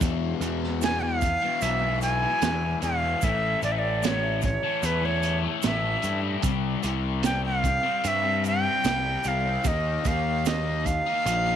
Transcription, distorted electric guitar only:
0.00 0.40 E2 loud
0.00 0.41 B2 loud
0.00 0.43 E3 loud
0.41 0.78 E2 medium
0.41 0.81 B2 medium
0.41 0.83 E3 medium
0.80 1.20 E2 loud
0.80 1.03 B2 medium
0.80 1.01 E3 loud
1.01 1.21 B2 medium
1.01 1.23 E3 medium
1.22 muted distorted electric guitar stroke medium
1.41 1.83 B2 medium
1.41 1.80 E3 medium
1.81 2.24 B2 medium
1.81 2.21 E3 medium
2.22 2.43 B2 medium
2.22 2.44 E3 medium
2.42 2.80 E2 medium
2.42 2.64 B2 loud
2.42 2.61 E3 loud
2.62 2.82 B2 medium
2.62 2.83 E3 medium
2.81 3.20 E2 medium
2.81 3.03 B2 medium
2.81 3.00 E3 medium
3.01 3.21 B2 medium
3.01 3.20 E3 medium
3.22 3.61 A2 medium
3.22 3.63 E3 medium
3.22 3.64 A3 loud
3.63 4.02 A2 medium
3.63 4.04 E3 medium
3.63 4.05 A3 medium
4.03 4.43 A2 loud
4.03 4.26 E3 loud
4.03 4.23 A3 loud
4.24 4.43 E3 medium
4.24 4.44 A3 medium
4.44 muted distorted electric guitar stroke soft
4.63 5.04 E3 medium
4.63 5.01 A3 medium
5.02 5.45 E3 medium
5.02 5.42 A3 medium
5.43 5.63 E3 medium
5.43 5.64 A3 medium
5.62 6.00 A2 loud
5.62 5.84 E3 loud
5.62 5.80 A3 loud
5.82 6.02 E3 medium
5.82 6.03 A3 medium
6.01 6.41 A2 medium
6.01 6.22 E3 medium
6.01 6.20 A3 medium
6.21 6.42 E3 medium
6.21 6.41 A3 medium
6.42 6.80 C3 loud
6.42 6.81 G3 loud
6.42 6.83 C4 loud
6.81 7.21 C3 medium
6.81 7.23 G3 medium
6.81 7.24 C4 medium
7.22 7.62 C3 medium
7.22 7.44 G3 medium
7.22 7.42 C4 loud
7.43 7.63 G3 medium
7.43 7.64 C4 medium
7.63 muted distorted electric guitar stroke soft
7.83 8.24 G3 medium
7.83 8.22 C4 medium
8.23 8.66 G3 medium
8.23 8.62 C4 medium
8.63 8.85 G3 medium
8.63 8.86 C4 medium
8.84 9.23 C3 medium
8.84 9.06 G3 loud
8.84 9.03 C4 loud
9.04 9.25 G3 medium
9.04 9.26 C4 medium
9.24 9.63 C3 medium
9.24 9.47 G3 medium
9.24 9.44 C4 medium
9.45 9.65 G3 medium
9.45 9.63 C4 medium
9.64 10.03 D#3 loud
9.64 10.05 A#3 medium
9.64 10.06 D#4 loud
10.04 10.43 D#3 medium
10.04 10.46 A#3 medium
10.04 10.47 D#4 medium
10.45 10.86 D#3 medium
10.45 10.68 A#3 loud
10.45 10.64 D#4 loud
10.66 10.86 A#3 medium
10.66 10.87 D#4 medium
10.87 muted distorted electric guitar stroke medium
11.06 11.48 A#3 medium
11.06 11.45 D#4 medium
11.47 11.56 A#3 medium
11.47 11.56 D#4 medium

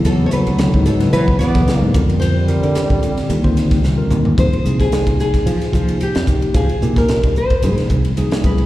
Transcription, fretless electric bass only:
0.05 0.27 E2 medium
0.33 muted fretless electric bass stroke soft
0.47 0.69 D2 medium
0.74 1.06 G#2 medium
1.13 1.25 E3 loud
1.28 muted fretless electric bass stroke soft
1.40 1.62 E2 medium
1.82 1.92 G#2 medium
1.95 2.50 F2 loud
2.63 2.73 D3 medium
2.75 muted fretless electric bass stroke soft
2.90 3.12 D3 medium
3.17 muted fretless electric bass stroke soft
3.29 3.84 D#2 medium
3.84 4.06 C2 medium
4.11 4.33 D#2 medium
4.38 4.50 F2 loud
4.53 muted fretless electric bass stroke soft
4.65 4.87 C2 medium
5.46 5.58 F3 medium
5.74 5.95 F3 medium
6.01 muted fretless electric bass stroke soft
6.16 6.26 F2 medium
6.43 muted fretless electric bass stroke soft
6.54 6.66 F3 medium
6.70 muted fretless electric bass stroke soft
6.83 7.04 A#2 medium
7.50 muted fretless electric bass stroke soft
7.64 7.75 G#2 loud
7.79 muted fretless electric bass stroke soft
7.90 8.12 C2 medium
8.44 8.66 C#2 medium

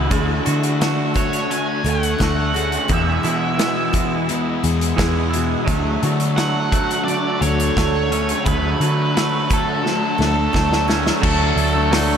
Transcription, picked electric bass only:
0.11 0.40 D2 loud
0.47 1.60 D3 medium
1.85 2.13 D2 medium
2.20 2.77 D2 medium
2.89 3.18 E2 loud
3.24 4.37 E3 medium
4.64 4.92 E2 loud
4.98 5.55 E2 medium
5.68 5.96 D2 loud
6.03 7.15 D3 medium
7.41 7.70 D2 loud
7.77 8.33 D2 medium
8.46 8.74 D2 loud
8.80 9.92 D3 medium
10.19 10.47 D2 medium
10.54 11.10 D2 medium
11.23 11.51 D2 medium
11.56 12.17 D2 loud

